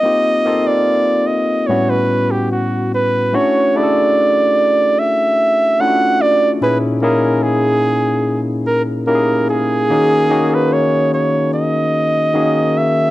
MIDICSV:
0, 0, Header, 1, 3, 480
1, 0, Start_track
1, 0, Tempo, 819672
1, 31, Time_signature, 4, 2, 24, 8
1, 7674, End_track
2, 0, Start_track
2, 0, Title_t, "Flugelhorn"
2, 0, Program_c, 0, 56
2, 0, Note_on_c, 0, 75, 127
2, 392, Note_on_c, 0, 74, 115
2, 401, Note_off_c, 0, 75, 0
2, 740, Note_on_c, 0, 75, 96
2, 748, Note_off_c, 0, 74, 0
2, 976, Note_on_c, 0, 73, 95
2, 985, Note_off_c, 0, 75, 0
2, 1111, Note_on_c, 0, 71, 100
2, 1120, Note_off_c, 0, 73, 0
2, 1353, Note_on_c, 0, 67, 85
2, 1362, Note_off_c, 0, 71, 0
2, 1470, Note_off_c, 0, 67, 0
2, 1473, Note_on_c, 0, 66, 75
2, 1698, Note_off_c, 0, 66, 0
2, 1724, Note_on_c, 0, 71, 99
2, 1964, Note_on_c, 0, 73, 93
2, 1973, Note_off_c, 0, 71, 0
2, 2207, Note_on_c, 0, 74, 96
2, 2216, Note_off_c, 0, 73, 0
2, 2922, Note_on_c, 0, 76, 110
2, 2931, Note_off_c, 0, 74, 0
2, 3399, Note_on_c, 0, 78, 113
2, 3408, Note_off_c, 0, 76, 0
2, 3640, Note_on_c, 0, 74, 108
2, 3648, Note_off_c, 0, 78, 0
2, 3808, Note_off_c, 0, 74, 0
2, 3879, Note_on_c, 0, 71, 93
2, 3972, Note_off_c, 0, 71, 0
2, 4113, Note_on_c, 0, 70, 84
2, 4349, Note_on_c, 0, 68, 101
2, 4358, Note_off_c, 0, 70, 0
2, 4922, Note_off_c, 0, 68, 0
2, 5073, Note_on_c, 0, 70, 95
2, 5167, Note_off_c, 0, 70, 0
2, 5313, Note_on_c, 0, 70, 95
2, 5538, Note_off_c, 0, 70, 0
2, 5564, Note_on_c, 0, 68, 118
2, 6173, Note_on_c, 0, 71, 95
2, 6182, Note_off_c, 0, 68, 0
2, 6283, Note_on_c, 0, 73, 98
2, 6292, Note_off_c, 0, 71, 0
2, 6520, Note_off_c, 0, 73, 0
2, 6523, Note_on_c, 0, 73, 80
2, 6743, Note_off_c, 0, 73, 0
2, 6756, Note_on_c, 0, 75, 100
2, 7479, Note_on_c, 0, 76, 114
2, 7488, Note_off_c, 0, 75, 0
2, 7674, Note_off_c, 0, 76, 0
2, 7674, End_track
3, 0, Start_track
3, 0, Title_t, "Tine electric piano"
3, 0, Program_c, 1, 4
3, 0, Control_c, 1, 64, 127
3, 18, Note_on_c, 1, 58, 72
3, 21, Note_on_c, 1, 60, 62
3, 27, Note_on_c, 1, 63, 60
3, 30, Note_on_c, 1, 65, 62
3, 31, Note_on_c, 1, 67, 75
3, 39, Control_c, 1, 64, 0
3, 139, Control_c, 1, 64, 127
3, 235, Note_off_c, 1, 58, 0
3, 236, Note_off_c, 1, 60, 0
3, 239, Note_off_c, 1, 63, 0
3, 241, Note_off_c, 1, 65, 0
3, 241, Note_off_c, 1, 67, 0
3, 265, Note_on_c, 1, 58, 71
3, 266, Note_on_c, 1, 60, 61
3, 270, Note_on_c, 1, 63, 62
3, 274, Note_on_c, 1, 65, 70
3, 275, Note_on_c, 1, 69, 78
3, 988, Note_on_c, 1, 45, 76
3, 990, Note_on_c, 1, 55, 69
3, 991, Note_off_c, 1, 58, 0
3, 991, Note_off_c, 1, 60, 0
3, 992, Note_on_c, 1, 59, 77
3, 993, Note_off_c, 1, 63, 0
3, 994, Note_on_c, 1, 61, 69
3, 995, Note_off_c, 1, 65, 0
3, 995, Note_on_c, 1, 64, 75
3, 996, Note_off_c, 1, 69, 0
3, 1000, Note_on_c, 1, 66, 89
3, 1002, Control_c, 1, 64, 0
3, 1090, Control_c, 1, 64, 127
3, 1828, Note_off_c, 1, 45, 0
3, 1830, Note_off_c, 1, 55, 0
3, 1830, Note_off_c, 1, 59, 0
3, 1832, Note_off_c, 1, 61, 0
3, 1832, Note_off_c, 1, 64, 0
3, 1835, Note_off_c, 1, 66, 0
3, 1950, Note_on_c, 1, 57, 71
3, 1954, Note_on_c, 1, 61, 65
3, 1955, Note_on_c, 1, 64, 61
3, 1957, Note_on_c, 1, 62, 65
3, 1958, Note_on_c, 1, 66, 83
3, 1965, Control_c, 1, 64, 0
3, 2060, Control_c, 1, 64, 127
3, 2163, Note_off_c, 1, 57, 0
3, 2165, Note_off_c, 1, 61, 0
3, 2166, Note_off_c, 1, 62, 0
3, 2166, Note_off_c, 1, 64, 0
3, 2167, Note_off_c, 1, 66, 0
3, 2197, Note_on_c, 1, 57, 70
3, 2201, Note_on_c, 1, 62, 60
3, 2205, Note_on_c, 1, 64, 67
3, 2209, Note_on_c, 1, 68, 59
3, 2244, Note_off_c, 1, 68, 0
3, 2244, Note_on_c, 1, 69, 80
3, 3033, Note_off_c, 1, 57, 0
3, 3036, Note_off_c, 1, 62, 0
3, 3037, Note_off_c, 1, 64, 0
3, 3057, Note_off_c, 1, 69, 0
3, 3393, Note_on_c, 1, 57, 68
3, 3396, Note_on_c, 1, 61, 57
3, 3398, Note_on_c, 1, 62, 64
3, 3401, Note_on_c, 1, 64, 57
3, 3403, Note_on_c, 1, 65, 62
3, 3441, Note_on_c, 1, 66, 66
3, 3442, Note_off_c, 1, 65, 0
3, 3814, Note_off_c, 1, 57, 0
3, 3816, Note_off_c, 1, 61, 0
3, 3817, Note_off_c, 1, 62, 0
3, 3818, Note_off_c, 1, 64, 0
3, 3838, Note_off_c, 1, 66, 0
3, 3872, Note_on_c, 1, 46, 75
3, 3878, Note_on_c, 1, 61, 68
3, 3878, Note_on_c, 1, 63, 59
3, 3880, Note_on_c, 1, 64, 70
3, 3884, Note_on_c, 1, 68, 69
3, 3886, Control_c, 1, 64, 0
3, 3991, Control_c, 1, 64, 127
3, 4085, Note_off_c, 1, 46, 0
3, 4087, Note_off_c, 1, 61, 0
3, 4087, Note_off_c, 1, 63, 0
3, 4089, Note_off_c, 1, 64, 0
3, 4091, Note_off_c, 1, 68, 0
3, 4113, Note_on_c, 1, 58, 82
3, 4115, Note_on_c, 1, 61, 75
3, 4117, Note_on_c, 1, 63, 66
3, 4121, Note_on_c, 1, 64, 71
3, 4124, Note_on_c, 1, 68, 80
3, 4951, Note_off_c, 1, 58, 0
3, 4952, Note_off_c, 1, 61, 0
3, 4953, Note_off_c, 1, 63, 0
3, 4955, Note_off_c, 1, 64, 0
3, 4957, Note_off_c, 1, 68, 0
3, 5313, Note_on_c, 1, 58, 72
3, 5314, Note_on_c, 1, 61, 61
3, 5319, Note_on_c, 1, 63, 55
3, 5321, Note_on_c, 1, 67, 58
3, 5323, Note_on_c, 1, 64, 65
3, 5358, Note_on_c, 1, 68, 73
3, 5360, Note_off_c, 1, 67, 0
3, 5734, Note_off_c, 1, 58, 0
3, 5734, Note_off_c, 1, 61, 0
3, 5737, Note_off_c, 1, 63, 0
3, 5739, Note_off_c, 1, 64, 0
3, 5757, Note_off_c, 1, 68, 0
3, 5797, Note_on_c, 1, 58, 65
3, 5798, Note_on_c, 1, 51, 65
3, 5801, Note_on_c, 1, 61, 64
3, 5805, Control_c, 1, 64, 0
3, 5805, Note_on_c, 1, 66, 57
3, 5806, Note_on_c, 1, 63, 71
3, 5809, Note_on_c, 1, 68, 75
3, 5897, Control_c, 1, 64, 127
3, 6006, Note_off_c, 1, 58, 0
3, 6007, Note_off_c, 1, 51, 0
3, 6008, Note_off_c, 1, 61, 0
3, 6010, Note_off_c, 1, 66, 0
3, 6011, Note_off_c, 1, 63, 0
3, 6012, Note_off_c, 1, 68, 0
3, 6031, Note_on_c, 1, 51, 70
3, 6031, Note_on_c, 1, 58, 65
3, 6036, Note_on_c, 1, 63, 65
3, 6037, Note_on_c, 1, 61, 71
3, 6040, Note_on_c, 1, 66, 65
3, 6042, Note_on_c, 1, 68, 84
3, 6869, Note_off_c, 1, 51, 0
3, 6869, Note_off_c, 1, 58, 0
3, 6871, Note_off_c, 1, 63, 0
3, 6872, Note_off_c, 1, 61, 0
3, 6873, Note_off_c, 1, 66, 0
3, 6874, Note_off_c, 1, 68, 0
3, 7224, Note_on_c, 1, 51, 74
3, 7230, Note_on_c, 1, 58, 64
3, 7230, Note_on_c, 1, 61, 56
3, 7232, Note_on_c, 1, 63, 67
3, 7235, Note_on_c, 1, 66, 59
3, 7236, Note_on_c, 1, 68, 76
3, 7648, Note_off_c, 1, 51, 0
3, 7651, Note_off_c, 1, 58, 0
3, 7651, Note_off_c, 1, 61, 0
3, 7652, Note_off_c, 1, 63, 0
3, 7653, Note_off_c, 1, 66, 0
3, 7654, Note_off_c, 1, 68, 0
3, 7674, End_track
0, 0, End_of_file